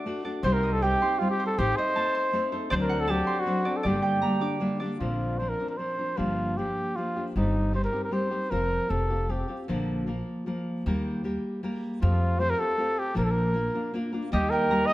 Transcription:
Already playing: D5 E5 F#5 A5 D6
0.06 A3 D4 F#4 A4
0.24 D4 F#4 A4 D5
0.43 C2 C3 G3 C4 D#4 G4 C5
0.53 A#4
0.63 D#5
0.73 A4
0.82 G3 C4 D#4 G4 G5
1.02 C4 D#4 G4 C6
1.19 G3 C4 D#4 F4 G4
1.30 G4
1.39 C5
1.46 A4
1.58 A1 A3 C4 D#4 G4 A4 C5
1.76 C5 D#5
1.96 A3 C4 D#4 A4 A5
2.15 C6
2.33 A3 C4 D#4 A4
2.52 C4 D#4 A4 C5
2.70 D2 D3 F#3 C4 D4 A4 C5 D5
2.82 A#4
2.89 F#5
3.00 A4
3.08 F#3 C4 D4 G4 A4 A5
3.27 C6
3.40 F#4
3.46 F#3 C4 D4 A4
3.65 C4 D4 A4 D5
3.77 A4
3.83 G1 G2 D3 G3 A#3 D4 G4 D5
4.02 G5
4.22 G3 A#3 D4 G4 A#5
4.41 G3 A#3 D4 G4 D6
4.60 G3 A#3 D4 G4
4.80 G3 A#3 D4 G4 D5
4.99 A#1 A#2 D3 F3 C4 D4 F4 A#4
5.38 F3 C4 D4 A#4 C5
5.49 A#4
5.59 F3 C4 D4 A#4
5.69 A#4
5.77 F3 C4 D4 A#4 C5
5.98 F3 C4 D4 A#4
6.17 G1 G2 D3 F3 A#3 D4 F4 G4
6.57 F3 A#3 D4 G4
6.96 F3 A#3 D4 F4 G4
7.16 F3 A#3 D4 G4
7.36 G1 G2 D#3 G3 C4 D#4 G4
7.73 G3 C4 D#4 G4 C5
7.84 A#4
7.93 G3 C4 D#4 G4
8.04 A#4
8.11 G3 C4 D#4 G4 C5
8.31 G3 C4 D#4 G4
8.50 F1 F3 C4 F4 A#4
8.89 F1 A3 C4 F4 G4 A4
9.10 C4 F4 G4
9.29 A3 C4 F4 G4
9.48 C4 F4 G4
9.68 A#1 A#2 D3 F3 A#3 F4 A#4
10.07 F3 A#3 F4 A#4
10.46 F3 A#3 F4 A#4
10.86 D#2 D#3 G3 A#3 G4 A#4
11.24 G3 A#3 G4 A#4
11.63 G3 A#3 G4 A#4
12.01 F2 F3 A3 C4 F4 G4
12.39 A3 C4 F4 G4 C5
12.50 A#4
12.59 C4 F4 G4 A4
12.78 A3 C4 F4 G4
12.99 G4
13.15 A#1 A#2 F3 A#3 D4 F4 A#4
13.24 A4
13.31 A#4
13.54 A#3 D4 F4 A#4
13.74 A#3 D4 F4 A#4
13.94 A#3 D4 F4 A#4
14.12 A#3 D4 F4 A#4
14.32 D#2 D#3 G3 A#3 D#4 G4 D#5
14.50 A#4 G5
14.70 G3 A#3 D#4 G4 A#5
14.86 D#5 D#6

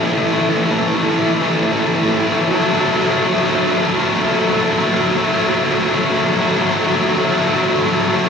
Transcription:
0.03 E3 A3
0.11 E3 A3
0.18 E3 A3
0.26 E3 A3
0.33 E3 A3
0.41 E3 A3
0.49 E3 A3
0.57 E3 A3
0.64 E3 A3
0.71 E3 A3
0.79 E3 A3
0.87 E3 A3
0.94 E3 A3
1.02 E3 A3
1.10 E3 A3
1.18 E3 A3
1.26 E3 A3
1.33 E3 A3
1.41 E3 A3
1.49 E3 A3
1.55 E3 A3
1.63 E3 A3
1.72 E3 A3
1.79 E3 A3
1.86 E3 A3
1.95 E3 A3
2.02 E3 A3
2.09 E3 A3
2.17 E3 A3
2.25 E3 A3
2.32 E3 A3
2.41 E3 A3
2.48 F#3 A3
2.55 F#3 A3
2.64 F#3 A3
2.72 F#3 A3
2.79 F#3 A3
2.86 F#3 A3
2.95 F#3 A3
3.02 F#3 A3
3.10 F#3 A3
3.17 F#3 A3
3.26 F#3 A3
3.33 F#3 A3
3.40 F#3 A3
3.48 F#3 A3
3.55 F#3 A3
3.63 F#3 A3
3.71 F#3 A3
3.78 F#3 A3
3.86 F#3 A3
3.94 F#3 A3
4.01 F#3 A3
4.08 F#3 A3
4.16 F#3 A3
4.24 F#3 A3
4.32 F#3 A3
4.39 F#3 A3
4.46 F#3 A3
4.54 F#3 A3
4.63 F#3 A3
4.70 F#3 A3
4.78 F#3 A3
4.86 F#3 A3
4.92 F#3 A3
5.00 F#3 A3
5.08 F#3 A3
5.16 F#3 A3
5.23 F#3 A3
5.31 F#3 A3
5.39 F#3 A3
5.48 F#3 A3
5.55 F#3 A3
5.64 F#3 A3
5.71 F#3 A3
5.79 F#3 A3
5.86 F#3 A3
5.94 F#3 A3
6.01 F#3 A3
6.09 F#3 A3
6.17 F#3 A3
6.25 F#3 A3
6.32 F#3 A3
6.40 F#3 A3
6.48 F#3 A3
6.55 F#3 A3
6.62 F#3 A3
6.70 F#3 A3
6.79 F#3 A3
6.86 F#3 A3
6.94 F#3 A3
7.01 F#3 A3
7.09 F#3 A3
7.16 F#3 A3
7.25 F#3 A3
7.32 F#3 A3
7.40 F#3 A3
7.47 F#3 A3
7.54 F#3 A3
7.63 F#3 A3
7.70 F#3 A3
7.78 F#3 A3
7.85 F#3 A3
7.94 F#3 A3
8.02 F#3 A3
8.08 F#3 A3
8.16 F#3 A3
8.25 F#3 A3

